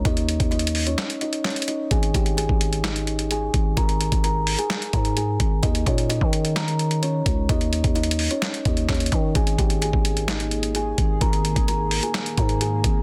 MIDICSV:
0, 0, Header, 1, 5, 480
1, 0, Start_track
1, 0, Tempo, 465116
1, 52, Time_signature, 4, 2, 24, 8
1, 13443, End_track
2, 0, Start_track
2, 0, Title_t, "Kalimba"
2, 0, Program_c, 0, 108
2, 54, Note_on_c, 0, 75, 109
2, 62, Note_on_c, 0, 63, 86
2, 504, Note_off_c, 0, 75, 0
2, 509, Note_off_c, 0, 63, 0
2, 527, Note_on_c, 0, 75, 89
2, 536, Note_on_c, 0, 63, 69
2, 868, Note_off_c, 0, 75, 0
2, 872, Note_off_c, 0, 63, 0
2, 897, Note_on_c, 0, 73, 71
2, 905, Note_on_c, 0, 61, 58
2, 1233, Note_off_c, 0, 73, 0
2, 1237, Note_off_c, 0, 61, 0
2, 1254, Note_on_c, 0, 75, 75
2, 1262, Note_on_c, 0, 63, 65
2, 1469, Note_off_c, 0, 75, 0
2, 1473, Note_off_c, 0, 63, 0
2, 1496, Note_on_c, 0, 73, 76
2, 1504, Note_on_c, 0, 61, 65
2, 1710, Note_off_c, 0, 73, 0
2, 1714, Note_off_c, 0, 61, 0
2, 1731, Note_on_c, 0, 75, 74
2, 1739, Note_on_c, 0, 63, 62
2, 1947, Note_off_c, 0, 75, 0
2, 1952, Note_off_c, 0, 63, 0
2, 1974, Note_on_c, 0, 68, 88
2, 1982, Note_on_c, 0, 80, 69
2, 2189, Note_off_c, 0, 68, 0
2, 2193, Note_off_c, 0, 80, 0
2, 2215, Note_on_c, 0, 67, 77
2, 2223, Note_on_c, 0, 79, 65
2, 2430, Note_off_c, 0, 67, 0
2, 2434, Note_off_c, 0, 79, 0
2, 2449, Note_on_c, 0, 68, 82
2, 2457, Note_on_c, 0, 80, 66
2, 2901, Note_off_c, 0, 68, 0
2, 2906, Note_off_c, 0, 80, 0
2, 2933, Note_on_c, 0, 63, 79
2, 3384, Note_off_c, 0, 63, 0
2, 3418, Note_on_c, 0, 68, 84
2, 3426, Note_on_c, 0, 80, 71
2, 3866, Note_off_c, 0, 68, 0
2, 3871, Note_off_c, 0, 80, 0
2, 3889, Note_on_c, 0, 70, 100
2, 3897, Note_on_c, 0, 82, 76
2, 4342, Note_off_c, 0, 70, 0
2, 4346, Note_off_c, 0, 82, 0
2, 4373, Note_on_c, 0, 70, 89
2, 4381, Note_on_c, 0, 82, 69
2, 4711, Note_off_c, 0, 70, 0
2, 4715, Note_off_c, 0, 82, 0
2, 4731, Note_on_c, 0, 68, 84
2, 4738, Note_on_c, 0, 80, 61
2, 5070, Note_off_c, 0, 68, 0
2, 5074, Note_off_c, 0, 80, 0
2, 5091, Note_on_c, 0, 70, 78
2, 5100, Note_on_c, 0, 82, 58
2, 5307, Note_off_c, 0, 70, 0
2, 5312, Note_off_c, 0, 82, 0
2, 5333, Note_on_c, 0, 68, 78
2, 5342, Note_on_c, 0, 80, 60
2, 5784, Note_off_c, 0, 68, 0
2, 5789, Note_off_c, 0, 80, 0
2, 5807, Note_on_c, 0, 75, 95
2, 5815, Note_on_c, 0, 63, 74
2, 6025, Note_off_c, 0, 75, 0
2, 6029, Note_off_c, 0, 63, 0
2, 6055, Note_on_c, 0, 73, 73
2, 6063, Note_on_c, 0, 61, 55
2, 6269, Note_off_c, 0, 73, 0
2, 6274, Note_off_c, 0, 61, 0
2, 6291, Note_on_c, 0, 75, 96
2, 6299, Note_on_c, 0, 63, 77
2, 6742, Note_off_c, 0, 75, 0
2, 6747, Note_off_c, 0, 63, 0
2, 6772, Note_on_c, 0, 70, 85
2, 6780, Note_on_c, 0, 82, 71
2, 7223, Note_off_c, 0, 70, 0
2, 7227, Note_off_c, 0, 82, 0
2, 7251, Note_on_c, 0, 73, 70
2, 7260, Note_on_c, 0, 61, 57
2, 7703, Note_off_c, 0, 73, 0
2, 7707, Note_off_c, 0, 61, 0
2, 7734, Note_on_c, 0, 75, 113
2, 7743, Note_on_c, 0, 63, 85
2, 8184, Note_off_c, 0, 75, 0
2, 8189, Note_off_c, 0, 63, 0
2, 8208, Note_on_c, 0, 75, 90
2, 8216, Note_on_c, 0, 63, 69
2, 8548, Note_off_c, 0, 75, 0
2, 8552, Note_off_c, 0, 63, 0
2, 8576, Note_on_c, 0, 73, 75
2, 8585, Note_on_c, 0, 61, 59
2, 8913, Note_off_c, 0, 73, 0
2, 8917, Note_off_c, 0, 61, 0
2, 8934, Note_on_c, 0, 75, 79
2, 8942, Note_on_c, 0, 63, 63
2, 9149, Note_off_c, 0, 75, 0
2, 9154, Note_off_c, 0, 63, 0
2, 9176, Note_on_c, 0, 73, 77
2, 9185, Note_on_c, 0, 61, 64
2, 9390, Note_off_c, 0, 73, 0
2, 9395, Note_off_c, 0, 61, 0
2, 9412, Note_on_c, 0, 75, 77
2, 9420, Note_on_c, 0, 63, 62
2, 9628, Note_off_c, 0, 75, 0
2, 9632, Note_off_c, 0, 63, 0
2, 9654, Note_on_c, 0, 68, 88
2, 9662, Note_on_c, 0, 80, 71
2, 9869, Note_off_c, 0, 68, 0
2, 9873, Note_off_c, 0, 80, 0
2, 9895, Note_on_c, 0, 67, 78
2, 9903, Note_on_c, 0, 79, 67
2, 10109, Note_off_c, 0, 67, 0
2, 10114, Note_off_c, 0, 79, 0
2, 10130, Note_on_c, 0, 68, 81
2, 10139, Note_on_c, 0, 80, 64
2, 10582, Note_off_c, 0, 68, 0
2, 10587, Note_off_c, 0, 80, 0
2, 10613, Note_on_c, 0, 63, 83
2, 10621, Note_on_c, 0, 75, 65
2, 11064, Note_off_c, 0, 63, 0
2, 11068, Note_off_c, 0, 75, 0
2, 11099, Note_on_c, 0, 68, 86
2, 11107, Note_on_c, 0, 80, 70
2, 11547, Note_off_c, 0, 68, 0
2, 11551, Note_off_c, 0, 80, 0
2, 11569, Note_on_c, 0, 70, 104
2, 11578, Note_on_c, 0, 82, 74
2, 12022, Note_off_c, 0, 70, 0
2, 12026, Note_off_c, 0, 82, 0
2, 12054, Note_on_c, 0, 70, 93
2, 12062, Note_on_c, 0, 82, 69
2, 12391, Note_off_c, 0, 70, 0
2, 12396, Note_off_c, 0, 82, 0
2, 12413, Note_on_c, 0, 68, 85
2, 12421, Note_on_c, 0, 80, 61
2, 12751, Note_off_c, 0, 68, 0
2, 12755, Note_off_c, 0, 80, 0
2, 12773, Note_on_c, 0, 70, 78
2, 12782, Note_on_c, 0, 82, 60
2, 12988, Note_off_c, 0, 70, 0
2, 12993, Note_off_c, 0, 82, 0
2, 13016, Note_on_c, 0, 68, 76
2, 13024, Note_on_c, 0, 80, 60
2, 13443, Note_off_c, 0, 68, 0
2, 13443, Note_off_c, 0, 80, 0
2, 13443, End_track
3, 0, Start_track
3, 0, Title_t, "Analog synth pad"
3, 0, Program_c, 1, 89
3, 9651, Note_on_c, 1, 51, 82
3, 9651, Note_on_c, 1, 58, 77
3, 9652, Note_on_c, 1, 68, 91
3, 13443, Note_off_c, 1, 51, 0
3, 13443, Note_off_c, 1, 58, 0
3, 13443, Note_off_c, 1, 68, 0
3, 13443, End_track
4, 0, Start_track
4, 0, Title_t, "808-style bass"
4, 0, Program_c, 2, 38
4, 53, Note_on_c, 2, 39, 110
4, 398, Note_off_c, 2, 39, 0
4, 412, Note_on_c, 2, 39, 97
4, 988, Note_off_c, 2, 39, 0
4, 1972, Note_on_c, 2, 32, 112
4, 2202, Note_off_c, 2, 32, 0
4, 2212, Note_on_c, 2, 32, 102
4, 2558, Note_off_c, 2, 32, 0
4, 2572, Note_on_c, 2, 32, 102
4, 3611, Note_off_c, 2, 32, 0
4, 3652, Note_on_c, 2, 32, 106
4, 3882, Note_off_c, 2, 32, 0
4, 3892, Note_on_c, 2, 32, 113
4, 4238, Note_off_c, 2, 32, 0
4, 4251, Note_on_c, 2, 32, 101
4, 4712, Note_off_c, 2, 32, 0
4, 5092, Note_on_c, 2, 44, 103
4, 5553, Note_off_c, 2, 44, 0
4, 5572, Note_on_c, 2, 32, 106
4, 5802, Note_off_c, 2, 32, 0
4, 5812, Note_on_c, 2, 39, 111
4, 6042, Note_off_c, 2, 39, 0
4, 6052, Note_on_c, 2, 46, 100
4, 6397, Note_off_c, 2, 46, 0
4, 6412, Note_on_c, 2, 51, 102
4, 7451, Note_off_c, 2, 51, 0
4, 7492, Note_on_c, 2, 37, 104
4, 7722, Note_off_c, 2, 37, 0
4, 7732, Note_on_c, 2, 39, 113
4, 8077, Note_off_c, 2, 39, 0
4, 8091, Note_on_c, 2, 39, 103
4, 8552, Note_off_c, 2, 39, 0
4, 8931, Note_on_c, 2, 39, 108
4, 9162, Note_off_c, 2, 39, 0
4, 9171, Note_on_c, 2, 39, 110
4, 9402, Note_off_c, 2, 39, 0
4, 9411, Note_on_c, 2, 51, 107
4, 9642, Note_off_c, 2, 51, 0
4, 9652, Note_on_c, 2, 32, 114
4, 9882, Note_off_c, 2, 32, 0
4, 9891, Note_on_c, 2, 32, 103
4, 10237, Note_off_c, 2, 32, 0
4, 10251, Note_on_c, 2, 32, 104
4, 11290, Note_off_c, 2, 32, 0
4, 11331, Note_on_c, 2, 32, 101
4, 11562, Note_off_c, 2, 32, 0
4, 11572, Note_on_c, 2, 32, 113
4, 11917, Note_off_c, 2, 32, 0
4, 11932, Note_on_c, 2, 32, 100
4, 12393, Note_off_c, 2, 32, 0
4, 12772, Note_on_c, 2, 44, 109
4, 13233, Note_off_c, 2, 44, 0
4, 13252, Note_on_c, 2, 32, 103
4, 13443, Note_off_c, 2, 32, 0
4, 13443, End_track
5, 0, Start_track
5, 0, Title_t, "Drums"
5, 53, Note_on_c, 9, 36, 112
5, 53, Note_on_c, 9, 42, 65
5, 156, Note_off_c, 9, 36, 0
5, 156, Note_off_c, 9, 42, 0
5, 174, Note_on_c, 9, 42, 65
5, 277, Note_off_c, 9, 42, 0
5, 295, Note_on_c, 9, 42, 72
5, 398, Note_off_c, 9, 42, 0
5, 412, Note_on_c, 9, 36, 98
5, 413, Note_on_c, 9, 42, 61
5, 515, Note_off_c, 9, 36, 0
5, 516, Note_off_c, 9, 42, 0
5, 533, Note_on_c, 9, 42, 49
5, 612, Note_off_c, 9, 42, 0
5, 612, Note_on_c, 9, 42, 66
5, 692, Note_off_c, 9, 42, 0
5, 692, Note_on_c, 9, 42, 82
5, 772, Note_on_c, 9, 46, 84
5, 795, Note_off_c, 9, 42, 0
5, 876, Note_off_c, 9, 46, 0
5, 894, Note_on_c, 9, 42, 57
5, 997, Note_off_c, 9, 42, 0
5, 1011, Note_on_c, 9, 38, 112
5, 1013, Note_on_c, 9, 42, 76
5, 1018, Note_on_c, 9, 39, 91
5, 1115, Note_off_c, 9, 38, 0
5, 1116, Note_off_c, 9, 42, 0
5, 1122, Note_off_c, 9, 39, 0
5, 1134, Note_on_c, 9, 42, 73
5, 1237, Note_off_c, 9, 42, 0
5, 1250, Note_on_c, 9, 42, 53
5, 1354, Note_off_c, 9, 42, 0
5, 1370, Note_on_c, 9, 42, 53
5, 1473, Note_off_c, 9, 42, 0
5, 1492, Note_on_c, 9, 38, 93
5, 1492, Note_on_c, 9, 42, 46
5, 1499, Note_on_c, 9, 39, 77
5, 1552, Note_off_c, 9, 42, 0
5, 1552, Note_on_c, 9, 42, 57
5, 1595, Note_off_c, 9, 38, 0
5, 1602, Note_off_c, 9, 39, 0
5, 1612, Note_off_c, 9, 42, 0
5, 1612, Note_on_c, 9, 42, 70
5, 1672, Note_off_c, 9, 42, 0
5, 1672, Note_on_c, 9, 42, 81
5, 1732, Note_off_c, 9, 42, 0
5, 1732, Note_on_c, 9, 42, 77
5, 1835, Note_off_c, 9, 42, 0
5, 1971, Note_on_c, 9, 42, 62
5, 1972, Note_on_c, 9, 36, 114
5, 2074, Note_off_c, 9, 42, 0
5, 2075, Note_off_c, 9, 36, 0
5, 2093, Note_on_c, 9, 42, 64
5, 2196, Note_off_c, 9, 42, 0
5, 2212, Note_on_c, 9, 36, 97
5, 2214, Note_on_c, 9, 42, 71
5, 2315, Note_off_c, 9, 36, 0
5, 2317, Note_off_c, 9, 42, 0
5, 2332, Note_on_c, 9, 42, 60
5, 2435, Note_off_c, 9, 42, 0
5, 2456, Note_on_c, 9, 42, 82
5, 2559, Note_off_c, 9, 42, 0
5, 2572, Note_on_c, 9, 36, 94
5, 2675, Note_off_c, 9, 36, 0
5, 2692, Note_on_c, 9, 42, 88
5, 2795, Note_off_c, 9, 42, 0
5, 2814, Note_on_c, 9, 42, 56
5, 2917, Note_off_c, 9, 42, 0
5, 2931, Note_on_c, 9, 38, 113
5, 2932, Note_on_c, 9, 42, 74
5, 2937, Note_on_c, 9, 39, 92
5, 3034, Note_off_c, 9, 38, 0
5, 3036, Note_off_c, 9, 42, 0
5, 3041, Note_off_c, 9, 39, 0
5, 3054, Note_on_c, 9, 42, 72
5, 3157, Note_off_c, 9, 42, 0
5, 3171, Note_on_c, 9, 42, 52
5, 3274, Note_off_c, 9, 42, 0
5, 3291, Note_on_c, 9, 42, 52
5, 3394, Note_off_c, 9, 42, 0
5, 3413, Note_on_c, 9, 42, 73
5, 3516, Note_off_c, 9, 42, 0
5, 3652, Note_on_c, 9, 36, 96
5, 3652, Note_on_c, 9, 42, 75
5, 3755, Note_off_c, 9, 36, 0
5, 3755, Note_off_c, 9, 42, 0
5, 3891, Note_on_c, 9, 42, 65
5, 3892, Note_on_c, 9, 36, 112
5, 3995, Note_off_c, 9, 36, 0
5, 3995, Note_off_c, 9, 42, 0
5, 4013, Note_on_c, 9, 42, 64
5, 4116, Note_off_c, 9, 42, 0
5, 4134, Note_on_c, 9, 42, 71
5, 4237, Note_off_c, 9, 42, 0
5, 4252, Note_on_c, 9, 36, 95
5, 4252, Note_on_c, 9, 42, 62
5, 4355, Note_off_c, 9, 36, 0
5, 4355, Note_off_c, 9, 42, 0
5, 4375, Note_on_c, 9, 42, 85
5, 4479, Note_off_c, 9, 42, 0
5, 4611, Note_on_c, 9, 46, 85
5, 4715, Note_off_c, 9, 46, 0
5, 4733, Note_on_c, 9, 42, 57
5, 4836, Note_off_c, 9, 42, 0
5, 4850, Note_on_c, 9, 38, 113
5, 4852, Note_on_c, 9, 42, 77
5, 4857, Note_on_c, 9, 39, 90
5, 4954, Note_off_c, 9, 38, 0
5, 4955, Note_off_c, 9, 42, 0
5, 4961, Note_off_c, 9, 39, 0
5, 4974, Note_on_c, 9, 42, 70
5, 5077, Note_off_c, 9, 42, 0
5, 5090, Note_on_c, 9, 42, 52
5, 5092, Note_on_c, 9, 36, 102
5, 5193, Note_off_c, 9, 42, 0
5, 5195, Note_off_c, 9, 36, 0
5, 5210, Note_on_c, 9, 42, 54
5, 5313, Note_off_c, 9, 42, 0
5, 5332, Note_on_c, 9, 42, 72
5, 5435, Note_off_c, 9, 42, 0
5, 5572, Note_on_c, 9, 36, 95
5, 5572, Note_on_c, 9, 42, 78
5, 5675, Note_off_c, 9, 36, 0
5, 5675, Note_off_c, 9, 42, 0
5, 5811, Note_on_c, 9, 42, 65
5, 5812, Note_on_c, 9, 36, 110
5, 5914, Note_off_c, 9, 42, 0
5, 5915, Note_off_c, 9, 36, 0
5, 5933, Note_on_c, 9, 42, 66
5, 6036, Note_off_c, 9, 42, 0
5, 6052, Note_on_c, 9, 36, 94
5, 6054, Note_on_c, 9, 42, 70
5, 6155, Note_off_c, 9, 36, 0
5, 6157, Note_off_c, 9, 42, 0
5, 6172, Note_on_c, 9, 42, 63
5, 6275, Note_off_c, 9, 42, 0
5, 6295, Note_on_c, 9, 42, 83
5, 6398, Note_off_c, 9, 42, 0
5, 6412, Note_on_c, 9, 36, 94
5, 6515, Note_off_c, 9, 36, 0
5, 6532, Note_on_c, 9, 42, 84
5, 6635, Note_off_c, 9, 42, 0
5, 6653, Note_on_c, 9, 42, 55
5, 6756, Note_off_c, 9, 42, 0
5, 6771, Note_on_c, 9, 38, 115
5, 6773, Note_on_c, 9, 42, 77
5, 6778, Note_on_c, 9, 39, 89
5, 6874, Note_off_c, 9, 38, 0
5, 6876, Note_off_c, 9, 42, 0
5, 6881, Note_off_c, 9, 39, 0
5, 6894, Note_on_c, 9, 42, 69
5, 6997, Note_off_c, 9, 42, 0
5, 7011, Note_on_c, 9, 42, 53
5, 7114, Note_off_c, 9, 42, 0
5, 7130, Note_on_c, 9, 42, 56
5, 7233, Note_off_c, 9, 42, 0
5, 7252, Note_on_c, 9, 42, 75
5, 7356, Note_off_c, 9, 42, 0
5, 7492, Note_on_c, 9, 36, 94
5, 7493, Note_on_c, 9, 42, 78
5, 7595, Note_off_c, 9, 36, 0
5, 7596, Note_off_c, 9, 42, 0
5, 7732, Note_on_c, 9, 36, 116
5, 7732, Note_on_c, 9, 42, 65
5, 7835, Note_off_c, 9, 36, 0
5, 7835, Note_off_c, 9, 42, 0
5, 7853, Note_on_c, 9, 42, 63
5, 7956, Note_off_c, 9, 42, 0
5, 7974, Note_on_c, 9, 42, 71
5, 8077, Note_off_c, 9, 42, 0
5, 8091, Note_on_c, 9, 36, 94
5, 8092, Note_on_c, 9, 42, 61
5, 8194, Note_off_c, 9, 36, 0
5, 8195, Note_off_c, 9, 42, 0
5, 8212, Note_on_c, 9, 42, 49
5, 8292, Note_off_c, 9, 42, 0
5, 8292, Note_on_c, 9, 42, 70
5, 8372, Note_off_c, 9, 42, 0
5, 8372, Note_on_c, 9, 42, 82
5, 8451, Note_on_c, 9, 46, 85
5, 8475, Note_off_c, 9, 42, 0
5, 8554, Note_off_c, 9, 46, 0
5, 8573, Note_on_c, 9, 42, 55
5, 8676, Note_off_c, 9, 42, 0
5, 8690, Note_on_c, 9, 38, 111
5, 8692, Note_on_c, 9, 42, 75
5, 8697, Note_on_c, 9, 39, 92
5, 8793, Note_off_c, 9, 38, 0
5, 8795, Note_off_c, 9, 42, 0
5, 8800, Note_off_c, 9, 39, 0
5, 8813, Note_on_c, 9, 42, 72
5, 8916, Note_off_c, 9, 42, 0
5, 8930, Note_on_c, 9, 42, 53
5, 8932, Note_on_c, 9, 36, 104
5, 9033, Note_off_c, 9, 42, 0
5, 9035, Note_off_c, 9, 36, 0
5, 9050, Note_on_c, 9, 42, 54
5, 9153, Note_off_c, 9, 42, 0
5, 9171, Note_on_c, 9, 36, 95
5, 9171, Note_on_c, 9, 38, 97
5, 9171, Note_on_c, 9, 42, 46
5, 9178, Note_on_c, 9, 39, 76
5, 9231, Note_off_c, 9, 42, 0
5, 9231, Note_on_c, 9, 42, 56
5, 9274, Note_off_c, 9, 36, 0
5, 9274, Note_off_c, 9, 38, 0
5, 9281, Note_off_c, 9, 39, 0
5, 9291, Note_off_c, 9, 42, 0
5, 9291, Note_on_c, 9, 42, 70
5, 9352, Note_off_c, 9, 42, 0
5, 9352, Note_on_c, 9, 42, 82
5, 9412, Note_off_c, 9, 42, 0
5, 9412, Note_on_c, 9, 36, 98
5, 9412, Note_on_c, 9, 42, 77
5, 9515, Note_off_c, 9, 36, 0
5, 9515, Note_off_c, 9, 42, 0
5, 9651, Note_on_c, 9, 42, 65
5, 9652, Note_on_c, 9, 36, 117
5, 9754, Note_off_c, 9, 42, 0
5, 9755, Note_off_c, 9, 36, 0
5, 9772, Note_on_c, 9, 42, 65
5, 9875, Note_off_c, 9, 42, 0
5, 9891, Note_on_c, 9, 36, 97
5, 9893, Note_on_c, 9, 42, 70
5, 9994, Note_off_c, 9, 36, 0
5, 9996, Note_off_c, 9, 42, 0
5, 10011, Note_on_c, 9, 42, 60
5, 10114, Note_off_c, 9, 42, 0
5, 10135, Note_on_c, 9, 42, 85
5, 10238, Note_off_c, 9, 42, 0
5, 10251, Note_on_c, 9, 36, 92
5, 10354, Note_off_c, 9, 36, 0
5, 10370, Note_on_c, 9, 42, 83
5, 10474, Note_off_c, 9, 42, 0
5, 10493, Note_on_c, 9, 42, 55
5, 10596, Note_off_c, 9, 42, 0
5, 10610, Note_on_c, 9, 38, 113
5, 10612, Note_on_c, 9, 42, 75
5, 10617, Note_on_c, 9, 39, 88
5, 10713, Note_off_c, 9, 38, 0
5, 10715, Note_off_c, 9, 42, 0
5, 10720, Note_off_c, 9, 39, 0
5, 10733, Note_on_c, 9, 42, 70
5, 10836, Note_off_c, 9, 42, 0
5, 10850, Note_on_c, 9, 42, 53
5, 10953, Note_off_c, 9, 42, 0
5, 10970, Note_on_c, 9, 42, 55
5, 11073, Note_off_c, 9, 42, 0
5, 11092, Note_on_c, 9, 42, 75
5, 11195, Note_off_c, 9, 42, 0
5, 11331, Note_on_c, 9, 42, 77
5, 11332, Note_on_c, 9, 36, 92
5, 11435, Note_off_c, 9, 36, 0
5, 11435, Note_off_c, 9, 42, 0
5, 11571, Note_on_c, 9, 42, 64
5, 11572, Note_on_c, 9, 36, 115
5, 11674, Note_off_c, 9, 42, 0
5, 11675, Note_off_c, 9, 36, 0
5, 11693, Note_on_c, 9, 42, 64
5, 11796, Note_off_c, 9, 42, 0
5, 11814, Note_on_c, 9, 42, 69
5, 11917, Note_off_c, 9, 42, 0
5, 11932, Note_on_c, 9, 36, 93
5, 11932, Note_on_c, 9, 42, 63
5, 12035, Note_off_c, 9, 36, 0
5, 12035, Note_off_c, 9, 42, 0
5, 12056, Note_on_c, 9, 42, 82
5, 12159, Note_off_c, 9, 42, 0
5, 12293, Note_on_c, 9, 46, 85
5, 12396, Note_off_c, 9, 46, 0
5, 12414, Note_on_c, 9, 42, 56
5, 12517, Note_off_c, 9, 42, 0
5, 12531, Note_on_c, 9, 38, 110
5, 12533, Note_on_c, 9, 42, 76
5, 12538, Note_on_c, 9, 39, 90
5, 12634, Note_off_c, 9, 38, 0
5, 12636, Note_off_c, 9, 42, 0
5, 12641, Note_off_c, 9, 39, 0
5, 12654, Note_on_c, 9, 42, 72
5, 12757, Note_off_c, 9, 42, 0
5, 12771, Note_on_c, 9, 42, 54
5, 12772, Note_on_c, 9, 36, 105
5, 12874, Note_off_c, 9, 42, 0
5, 12875, Note_off_c, 9, 36, 0
5, 12890, Note_on_c, 9, 42, 53
5, 12993, Note_off_c, 9, 42, 0
5, 13012, Note_on_c, 9, 42, 75
5, 13116, Note_off_c, 9, 42, 0
5, 13252, Note_on_c, 9, 36, 96
5, 13252, Note_on_c, 9, 42, 76
5, 13355, Note_off_c, 9, 36, 0
5, 13355, Note_off_c, 9, 42, 0
5, 13443, End_track
0, 0, End_of_file